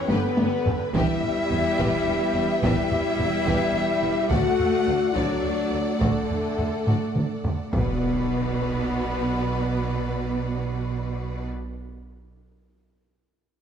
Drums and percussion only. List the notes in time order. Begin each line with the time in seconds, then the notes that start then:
0.09 taiko high
0.37 taiko high
0.66 taiko low
0.95 taiko
1.24 taiko low
1.52 taiko low
1.80 taiko
2.63 taiko
2.91 taiko low
3.19 taiko low
3.47 taiko
4.31 taiko
4.59 taiko low
4.88 taiko low
5.16 taiko
6.01 taiko
6.30 taiko low
6.59 taiko low
6.87 taiko low-mid
7.16 taiko mid
7.44 taiko low
7.73 taiko